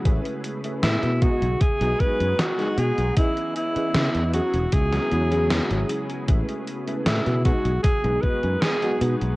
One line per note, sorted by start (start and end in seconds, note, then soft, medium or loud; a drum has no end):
0.00 1.19 C#3 medium
0.05 0.18 A1 loud
0.05 0.59 A3 medium
0.05 4.30 B3 medium
0.05 0.59 C#4 medium
0.05 0.60 E4 medium
0.05 3.14 G#4 loud
0.05 0.60 G#4 medium
0.05 0.60 B4 medium
0.05 kick loud
0.05 closed hi-hat loud
0.25 closed hi-hat soft
0.44 closed hi-hat medium
0.64 1.17 A3 medium
0.64 1.18 C#4 medium
0.64 1.18 E4 medium
0.64 1.18 G#4 medium
0.64 1.18 B4 medium
0.64 closed hi-hat soft
0.83 0.96 A2 medium
0.83 1.23 E4 medium
0.83 snare loud
0.83 closed hi-hat medium
1.03 1.27 B2 medium
1.03 closed hi-hat soft
1.22 3.15 F#3 medium
1.22 1.45 G#3 medium
1.22 1.45 B3 medium
1.22 1.45 D#4 medium
1.22 1.63 F#4 loud
1.22 1.45 F#4 medium
1.22 1.45 G#4 medium
1.22 kick loud
1.22 closed hi-hat medium
1.42 1.54 B1 medium
1.42 closed hi-hat soft
1.61 2.02 G#4 loud
1.61 muted fingered electric bass stroke soft
1.61 kick loud
1.61 closed hi-hat loud
1.81 1.93 B1 loud
1.81 2.54 G#3 medium
1.81 2.54 B3 medium
1.81 2.55 D#4 medium
1.81 2.55 F#4 medium
1.81 2.55 G#4 loud
1.81 closed hi-hat soft
2.00 2.41 B4 loud
2.00 kick medium
2.00 closed hi-hat soft
2.20 2.32 F#2 medium
2.20 closed hi-hat soft
2.39 2.80 F#4 loud
2.39 snare loud
2.39 closed hi-hat loud
2.58 3.12 G#3 medium
2.58 3.12 B3 medium
2.58 3.13 D#4 medium
2.58 3.13 F#4 medium
2.58 3.13 G#4 loud
2.58 closed hi-hat soft
2.78 2.90 B2 medium
2.78 3.17 G#4 loud
2.78 closed hi-hat medium
2.98 3.10 B1 medium
2.98 closed hi-hat soft
3.17 3.71 E3 medium
3.17 3.71 B3 medium
3.17 3.71 C#4 medium
3.17 3.53 E4 loud
3.17 3.72 G#4 medium
3.17 3.72 D#5 medium
3.17 kick loud
3.17 closed hi-hat loud
3.37 closed hi-hat soft
3.56 4.30 E4 loud
3.56 closed hi-hat medium
3.76 4.29 E3 medium
3.76 4.29 B3 medium
3.76 4.30 C#4 medium
3.76 4.30 G#4 medium
3.76 4.30 D#5 medium
3.76 muted fingered electric bass stroke soft
3.76 closed hi-hat soft
3.94 4.07 C#3 medium
3.94 snare loud
3.94 closed hi-hat medium
4.15 4.39 E2 medium
4.15 closed hi-hat soft
4.33 7.42 C#3 medium
4.33 4.56 F#3 medium
4.33 6.27 G#3 medium
4.33 4.56 B3 medium
4.33 4.57 C#4 medium
4.33 4.57 E4 medium
4.33 6.26 F#4 medium
4.33 4.75 F#4 medium
4.33 4.57 G#4 loud
4.33 closed hi-hat medium
4.54 4.66 E1 medium
4.54 closed hi-hat soft
4.72 4.98 C#2 medium
4.72 5.90 G#4 medium
4.72 kick loud
4.72 closed hi-hat loud
4.92 5.08 F#3 medium
4.92 5.08 B3 medium
4.92 5.08 C#4 medium
4.92 5.08 E4 medium
4.92 5.08 G#4 loud
4.92 snare soft
4.92 closed hi-hat soft
5.11 5.59 E2 medium
5.11 5.27 F#3 medium
5.11 5.27 B3 medium
5.11 5.27 C#4 medium
5.11 5.27 E4 medium
5.11 5.28 G#4 loud
5.11 closed hi-hat soft
5.31 5.66 F#3 loud
5.31 5.66 B3 medium
5.31 5.66 C#4 medium
5.31 5.66 E4 loud
5.31 5.66 G#4 loud
5.31 closed hi-hat soft
5.50 snare loud
5.50 closed hi-hat medium
5.70 5.83 G#1 medium
5.70 6.24 F#3 medium
5.70 6.24 B3 medium
5.70 6.24 C#4 medium
5.70 6.24 E4 medium
5.70 6.25 G#4 medium
5.70 closed hi-hat soft
5.89 closed hi-hat medium
6.10 closed hi-hat soft
6.27 6.41 A1 loud
6.27 6.82 A3 medium
6.27 7.44 B3 medium
6.27 6.82 C#4 medium
6.27 6.83 E4 medium
6.27 9.36 G#4 loud
6.27 6.83 G#4 medium
6.27 6.83 B4 medium
6.27 kick loud
6.27 closed hi-hat medium
6.49 closed hi-hat soft
6.67 closed hi-hat medium
6.87 7.41 A3 medium
6.87 7.41 C#4 medium
6.87 7.41 E4 medium
6.87 7.41 G#4 medium
6.87 7.41 B4 medium
6.87 closed hi-hat soft
7.06 7.19 A2 medium
7.06 7.43 E4 medium
7.06 snare loud
7.06 closed hi-hat medium
7.26 7.51 B2 medium
7.26 closed hi-hat soft
7.45 9.36 F#3 medium
7.45 7.68 G#3 medium
7.45 7.68 B3 medium
7.45 9.36 B3 medium
7.45 7.68 D#4 medium
7.45 7.82 F#4 medium
7.45 7.68 F#4 medium
7.45 7.69 G#4 loud
7.45 kick loud
7.45 closed hi-hat medium
7.65 7.77 B1 medium
7.65 closed hi-hat soft
7.83 8.23 G#4 loud
7.83 kick loud
7.83 closed hi-hat medium
8.04 8.16 B1 loud
8.04 8.77 G#3 medium
8.04 8.77 B3 medium
8.04 8.78 D#4 medium
8.04 8.78 F#4 medium
8.04 8.78 G#4 loud
8.04 closed hi-hat soft
8.22 8.63 B4 loud
8.22 kick medium
8.22 closed hi-hat soft
8.43 8.55 F#2 medium
8.43 closed hi-hat soft
8.62 9.01 G#4 loud
8.62 snare loud
8.62 closed hi-hat medium
8.82 9.35 G#3 medium
8.82 9.36 B3 medium
8.82 9.36 D#4 medium
8.82 9.36 F#4 medium
8.82 9.36 G#4 loud
8.82 closed hi-hat soft
9.01 9.14 B2 medium
9.01 closed hi-hat medium
9.21 9.33 B1 loud
9.21 closed hi-hat soft